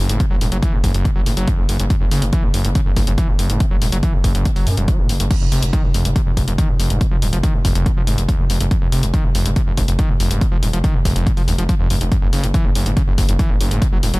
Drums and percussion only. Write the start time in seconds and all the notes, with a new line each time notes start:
0.09 closed hi-hat
0.20 kick, closed hi-hat
0.41 open hi-hat
0.52 closed hi-hat
0.63 kick, closed hi-hat
0.84 kick, open hi-hat
0.94 closed hi-hat
1.05 kick, closed hi-hat
1.26 open hi-hat
1.37 closed hi-hat
1.48 kick, closed hi-hat
1.69 open hi-hat
1.80 closed hi-hat
1.90 kick, closed hi-hat
2.11 open hi-hat
2.22 closed hi-hat
2.33 kick, closed hi-hat
2.54 open hi-hat
2.65 closed hi-hat
2.75 kick, closed hi-hat
2.96 kick, open hi-hat
3.07 closed hi-hat
3.18 kick, closed hi-hat
3.39 open hi-hat
3.50 closed hi-hat
3.60 kick, closed hi-hat
3.82 open hi-hat
3.92 closed hi-hat
4.03 kick, closed hi-hat
4.24 kick, open hi-hat
4.35 closed hi-hat
4.45 kick, closed hi-hat
4.56 open hi-hat
4.67 open hi-hat
4.77 closed hi-hat
4.88 kick, closed hi-hat
5.09 open hi-hat
5.20 closed hi-hat
5.31 kick, closed hi-hat, crash
5.52 open hi-hat
5.62 closed hi-hat
5.73 kick, closed hi-hat
5.94 open hi-hat
6.05 closed hi-hat
6.16 kick, closed hi-hat
6.37 kick, open hi-hat
6.48 closed hi-hat
6.58 kick, closed hi-hat
6.80 open hi-hat
6.90 closed hi-hat
7.01 kick, closed hi-hat
7.22 open hi-hat
7.33 closed hi-hat
7.43 kick, closed hi-hat
7.65 kick, open hi-hat
7.75 closed hi-hat
7.86 kick, closed hi-hat
8.07 open hi-hat
8.18 closed hi-hat
8.29 kick, closed hi-hat
8.50 open hi-hat
8.61 closed hi-hat
8.71 kick, closed hi-hat
8.92 open hi-hat
9.03 closed hi-hat
9.14 kick, closed hi-hat
9.35 open hi-hat
9.46 closed hi-hat
9.56 kick, closed hi-hat
9.77 kick, open hi-hat
9.88 closed hi-hat
9.99 kick, closed hi-hat
10.20 open hi-hat
10.31 closed hi-hat
10.41 kick, closed hi-hat
10.63 open hi-hat
10.73 closed hi-hat
10.84 kick, closed hi-hat
11.05 kick, open hi-hat
11.16 closed hi-hat
11.27 kick, closed hi-hat
11.37 open hi-hat
11.48 open hi-hat
11.58 closed hi-hat
11.69 kick, closed hi-hat
11.90 open hi-hat
12.01 closed hi-hat
12.12 kick, closed hi-hat
12.33 open hi-hat
12.44 closed hi-hat
12.54 kick, closed hi-hat
12.75 open hi-hat
12.86 closed hi-hat
12.97 kick, closed hi-hat
13.18 kick, open hi-hat
13.29 closed hi-hat
13.39 kick, closed hi-hat
13.61 open hi-hat
13.71 closed hi-hat
13.82 kick, closed hi-hat
14.03 open hi-hat
14.14 closed hi-hat